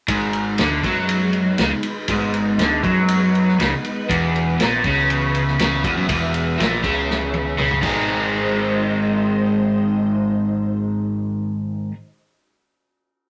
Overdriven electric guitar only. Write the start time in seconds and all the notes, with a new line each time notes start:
0.08 G#2
0.59 D3
0.85 F#3
1.60 C#3
2.09 G#2
2.60 D3
2.84 F#3
3.59 C#3
4.10 E2
4.60 A#2
4.86 C#3
5.59 C#3
5.83 E2
5.96 F#2
6.09 E2
6.58 A#2
6.84 C#3
7.58 C#3
7.81 G#2 D#3 G#3 C4 D#4
7.85 G#4